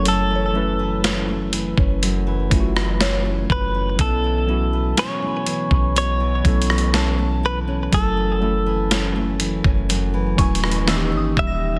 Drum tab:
HH |x-----------x-----x-----x-----x-----x-----------|x-----------x-----x-----x-----x-x-x-x-----------|x-----------x-----x-----x-----x-x-x-x-----------|
SD |------------o--------------------r--o-----------|------------o--------------------r--o-----------|------------o--------------------r--o-----------|
BD |---------------------o--------o-----------o-----|o--------------------o--------o-----------------|o--------------------o--------o-----------o-----|